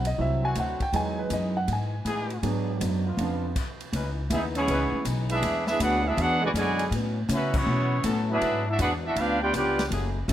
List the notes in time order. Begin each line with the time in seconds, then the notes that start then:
Already playing: B1
0.05 D#5, ride
0.18 C2 D3 F#3 C4 E4 E5
0.42 E3 C4 D4 F#4 G#5
0.55 D2 D3 F#3 C4 E4, hi-hat pedal, ride
0.60 F#5
0.80 G5, muted upright bass stroke, kick, ride
0.92 E2 E3 F#3 G#3 B3 D#4 G#5, ride
1.19 B4
1.30 F#2 E3 G#3 B3 D#4 D#5, hi-hat pedal, ride
1.57 F#5
1.68 G#2 E3 G#3 B3 D#4, ride
1.73 G#5
2.05 A2 E3 G#3 B3 D#4 G#4, hi-hat pedal, ride
2.30 ride
2.41 G#2 F#3 B3 D4 G#4, ride
2.46 B3 D4
2.80 F#2 G#2 F#3 B3 D4, hi-hat pedal, ride
3.04 D3 B3 F4
3.17 F2 C#3 F3 B3 D4, ride
3.21 B3 D4
3.56 kick, hi-hat pedal, crash, ride
3.80 ride
3.93 C#2 C#3 E3 B3 C#4 D#4 B4, ride
4.30 D#2 C#3 E3 G#3 B3 D#4 E4 G#4 E5, hi-hat pedal, ride
4.55 E3 G#3 B3 C#4 E4 G#4 C#5, ride
4.67 C#2 C#3 E3 B3 C#4 D#4 B4, ride
4.92 muted upright bass stroke
5.05 B1 C#3 E3 B3 D#4, hi-hat pedal, ride
5.29 G#3 B3 D4 E4 G#4 B4 E5, ride
5.42 E2 E3 D4 G#4 C#5, ride
5.67 G#3 B3 D4 E4 G#4 B4 E5, snare
5.80 D2 E3 B3 D4 F#4 G#4 B4 C#5 F#5, hi-hat pedal, ride
6.05 G#3 B3 D4 E4 G#4 B4 E5
6.17 E2 E3 B3 D4 F#4 G#4 B4 C#5 F#5, ride
6.42 B2 D3 G#3 F#4 B4 D5 G#5
6.54 F#2 B2 D3 E3 F#3 G#3 C#4 D4 G#4 C#5 D5, hi-hat pedal, ride
6.58 F#4 B4 G#5
6.79 ride
6.91 A2 F#3 B3, ride
6.95 C#4
7.29 A2 C#3 F#3 B3 C#4 E4, hi-hat pedal, ride
7.33 C#4 F#4 B4 E5
7.54 E3 F#3 B3 C#4 E4 F#4 C#5, kick, crash
7.66 A2 B2 F#3 B3 C#4
8.04 A2 F#3 B3 C#4 A4, hi-hat pedal, ride
8.08 C#4
8.29 F#3 B3 D4 E4 G#4 B4 E5
8.41 G#2 F#3 B3 D4, ride
8.67 D4 E4 F#4 A4 E5
8.79 E2 G#2 F#3 B3 D4 F#4 G#4 B4 F#5, hi-hat pedal, ride
9.05 D4 E4 F#4 A4 E5
9.16 D2 G2 F3 B3 C#4 D4 F4 G4 B4 F5, ride
9.42 B3 D4 F4 G4 B4 D5 G5
9.53 C#2 G2 F3 B3 C#4 D4 F4 G4 B4 D5 G5, hi-hat pedal, ride
9.79 snare, ride
9.90 F#1 F#3 A3 E4 G#4, ride
10.27 G#1 F#3 A3 C#4 E4, hi-hat pedal, ride